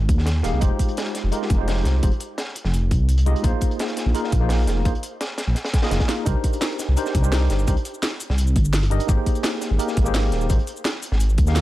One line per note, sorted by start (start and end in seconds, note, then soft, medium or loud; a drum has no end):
0.00 0.10 G#1 loud
0.09 0.43 D#2 loud
0.09 kick loud
0.09 closed hi-hat medium
0.18 snare soft
0.26 snare loud
0.26 closed hi-hat medium
0.43 0.53 D#1 medium
0.43 0.59 A#3 medium
0.43 0.60 D#4 medium
0.43 0.60 G4 medium
0.43 0.60 G#4 medium
0.43 0.60 F5 loud
0.43 snare medium
0.43 closed hi-hat medium
0.54 0.61 C2 medium
0.60 0.70 F1 medium
0.60 1.29 G#3 medium
0.60 1.30 D#4 medium
0.60 1.30 F4 medium
0.60 1.31 G4 medium
0.60 1.31 C5 medium
0.60 kick loud
0.60 closed hi-hat medium
0.79 kick medium
0.79 closed hi-hat medium
0.89 closed hi-hat soft
0.97 snare loud
0.97 closed hi-hat medium
1.06 closed hi-hat soft
1.14 snare soft
1.14 closed hi-hat medium
1.24 1.32 F1 loud
1.31 1.56 G#3 medium
1.31 1.57 D#4 medium
1.31 1.57 F4 medium
1.31 1.57 G4 medium
1.31 1.57 A#4 medium
1.31 closed hi-hat medium
1.42 snare soft
1.50 1.84 F1 loud
1.50 kick loud
1.50 closed hi-hat medium
1.58 2.00 G#3 medium
1.58 2.01 D#4 medium
1.58 2.01 F4 medium
1.58 2.02 G4 medium
1.58 2.02 C5 medium
1.68 snare loud
1.68 closed hi-hat medium
1.68 open hi-hat medium
1.85 2.01 C2 medium
1.85 snare medium
1.85 closed hi-hat medium
2.02 2.11 F1 loud
2.02 2.10 G#3 medium
2.02 2.10 D#4 medium
2.02 2.10 F4 medium
2.02 2.10 G4 medium
2.02 2.11 C5 medium
2.02 kick loud
2.02 closed hi-hat medium
2.12 closed hi-hat soft
2.20 closed hi-hat medium
2.38 snare loud
2.38 closed hi-hat medium
2.55 closed hi-hat medium
2.65 2.93 F1 loud
2.65 snare soft
2.73 closed hi-hat medium
2.91 3.25 C2 medium
2.91 kick loud
2.91 closed hi-hat medium
3.09 closed hi-hat medium
3.18 closed hi-hat medium
3.26 3.35 C2 medium
3.26 3.42 G#3 medium
3.26 3.42 D#4 medium
3.26 3.42 F4 medium
3.26 3.43 G4 medium
3.26 3.43 D#5 loud
3.26 closed hi-hat medium
3.36 closed hi-hat medium
3.42 3.52 A#1 loud
3.42 4.12 A#3 medium
3.42 4.12 D#4 medium
3.42 4.13 F4 medium
3.42 4.13 G#4 medium
3.42 4.14 C5 loud
3.42 kick loud
3.42 closed hi-hat medium
3.61 kick medium
3.61 closed hi-hat medium
3.71 closed hi-hat soft
3.79 snare loud
3.79 closed hi-hat medium
3.88 closed hi-hat soft
3.97 snare medium
3.97 closed hi-hat medium
4.06 4.14 A#1 loud
4.14 4.39 A#3 medium
4.14 4.39 D#4 medium
4.14 4.39 F4 medium
4.14 4.40 G#4 medium
4.14 4.40 A#4 loud
4.14 closed hi-hat medium
4.24 snare soft
4.32 4.66 A#1 medium
4.32 kick loud
4.32 closed hi-hat medium
4.40 4.83 A#3 medium
4.40 4.83 D#4 medium
4.40 4.84 F4 medium
4.40 4.84 G#4 medium
4.40 4.84 C5 medium
4.49 snare loud
4.49 closed hi-hat medium
4.49 open hi-hat medium
4.67 4.84 F1 medium
4.67 snare medium
4.67 closed hi-hat medium
4.85 4.94 A#1 loud
4.85 4.92 A#3 medium
4.85 4.92 D#4 medium
4.85 4.93 F4 medium
4.85 4.93 G#4 medium
4.85 4.93 C5 medium
4.85 kick loud
4.85 closed hi-hat medium
4.95 closed hi-hat soft
5.03 closed hi-hat loud
5.03 closed hi-hat medium
5.21 snare loud
5.21 closed hi-hat medium
5.38 snare loud
5.38 closed hi-hat medium
5.48 5.55 A#1 loud
5.55 snare soft
5.55 closed hi-hat medium
5.65 snare loud
5.65 closed hi-hat medium
5.73 kick loud
5.73 snare loud
5.73 closed hi-hat medium
5.73 closed hi-hat loud
5.82 6.07 A#3 loud
5.82 6.07 D#4 medium
5.82 6.07 F4 medium
5.82 6.07 G#4 medium
5.82 6.07 D#5 loud
5.82 snare loud
5.82 closed hi-hat medium
5.91 6.00 F1 medium
5.91 snare loud
5.91 closed hi-hat medium
6.00 kick medium
6.00 snare loud
6.00 closed hi-hat medium
6.08 6.24 A#3 medium
6.08 6.24 D#4 medium
6.08 6.25 F4 medium
6.08 6.25 G#4 medium
6.08 6.25 A#4 medium
6.08 snare soft
6.08 snare medium
6.08 closed hi-hat medium
6.24 6.35 C2 medium
6.24 6.94 D4 medium
6.24 6.95 D#4 medium
6.24 6.95 G4 medium
6.24 6.96 A#4 medium
6.24 6.96 C5 medium
6.24 kick loud
6.24 closed hi-hat medium
6.24 cabasa soft
6.44 kick medium
6.44 closed hi-hat medium
6.53 closed hi-hat soft
6.53 cabasa soft
6.61 snare loud
6.61 closed hi-hat medium
6.61 cabasa soft
6.71 closed hi-hat soft
6.79 snare soft
6.79 closed hi-hat medium
6.79 closed hi-hat loud
6.79 cabasa medium
6.89 6.96 C2 loud
6.96 7.21 D4 medium
6.96 7.22 D#4 medium
6.96 7.22 G4 medium
6.96 7.22 A#4 medium
6.96 7.22 C5 medium
6.96 closed hi-hat medium
6.96 cabasa soft
7.06 snare soft
7.06 cabasa soft
7.15 7.49 C2 medium
7.15 kick loud
7.15 closed hi-hat medium
7.15 closed hi-hat loud
7.22 7.65 D4 medium
7.22 7.65 D#4 medium
7.22 7.66 G4 medium
7.22 7.66 A#4 medium
7.22 7.67 C5 loud
7.22 cabasa medium
7.32 snare loud
7.32 closed hi-hat medium
7.32 open hi-hat medium
7.32 cabasa soft
7.50 7.66 G1 medium
7.50 snare medium
7.50 closed hi-hat medium
7.59 cabasa soft
7.67 7.76 C2 medium
7.67 7.74 D4 medium
7.67 7.75 D#4 medium
7.67 7.75 G4 medium
7.67 7.75 A#4 medium
7.67 7.75 C5 medium
7.67 kick loud
7.67 closed hi-hat medium
7.67 cabasa soft
7.77 closed hi-hat soft
7.85 closed hi-hat medium
7.85 cabasa soft
7.94 cabasa soft
8.03 snare loud
8.03 closed hi-hat medium
8.03 cabasa soft
8.20 closed hi-hat loud
8.20 closed hi-hat medium
8.20 cabasa medium
8.30 8.57 C2 medium
8.30 snare medium
8.38 closed hi-hat medium
8.38 cabasa soft
8.47 cabasa soft
8.56 8.90 G1 loud
8.56 kick loud
8.56 closed hi-hat medium
8.65 cabasa medium
8.73 snare loud
8.73 closed hi-hat medium
8.73 cabasa soft
8.83 snare soft
8.83 closed hi-hat medium
8.90 9.00 G1 medium
8.90 9.06 D4 medium
8.90 9.07 D#4 medium
8.90 9.07 G4 medium
8.90 9.07 A#4 medium
8.90 9.07 D#5 loud
8.90 closed hi-hat medium
9.00 closed hi-hat medium
9.00 cabasa soft
9.07 9.17 G#1 loud
9.07 9.77 A#3 medium
9.07 9.77 D#4 medium
9.07 9.78 G4 medium
9.07 9.78 G#4 medium
9.07 9.78 C5 loud
9.07 kick loud
9.07 closed hi-hat medium
9.07 cabasa soft
9.26 kick medium
9.26 closed hi-hat medium
9.35 closed hi-hat soft
9.35 cabasa soft
9.43 snare loud
9.43 closed hi-hat medium
9.43 cabasa soft
9.53 closed hi-hat soft
9.61 snare medium
9.61 closed hi-hat medium
9.61 cabasa medium
9.71 9.79 G#1 loud
9.78 10.03 A#3 medium
9.78 10.04 D#4 medium
9.78 10.04 G4 medium
9.78 10.04 G#4 medium
9.78 10.05 A#4 medium
9.78 closed hi-hat medium
9.78 cabasa soft
9.88 snare soft
9.88 cabasa soft
9.97 10.31 G#1 loud
9.97 kick loud
9.97 closed hi-hat medium
10.04 10.47 A#3 medium
10.04 10.47 D#4 medium
10.04 10.48 G4 medium
10.04 10.48 G#4 medium
10.04 10.49 C5 loud
10.04 cabasa medium
10.14 snare loud
10.14 closed hi-hat medium
10.14 open hi-hat medium
10.14 cabasa soft
10.32 10.48 D#1 medium
10.32 snare medium
10.32 closed hi-hat medium
10.41 cabasa soft
10.49 10.58 G#1 loud
10.49 10.57 A#3 medium
10.49 10.57 D#4 medium
10.49 10.57 G4 medium
10.49 10.57 G#4 medium
10.49 10.58 C5 medium
10.49 kick loud
10.49 closed hi-hat medium
10.49 cabasa soft
10.59 closed hi-hat soft
10.67 closed hi-hat medium
10.67 cabasa soft
10.77 cabasa soft
10.85 snare loud
10.85 closed hi-hat medium
10.85 cabasa soft
11.03 closed hi-hat medium
11.03 cabasa medium
11.12 11.40 G#1 loud
11.12 snare medium
11.20 closed hi-hat medium
11.20 cabasa soft
11.30 cabasa soft
11.38 11.61 D#2 loud
11.38 kick loud
11.38 closed hi-hat medium
11.47 11.61 A#3 loud
11.47 11.61 D#4 medium
11.47 11.61 G4 medium
11.47 11.61 G#4 medium
11.47 11.61 F5 loud
11.47 snare medium
11.47 cabasa medium
11.56 snare loud
11.56 closed hi-hat medium
11.56 cabasa soft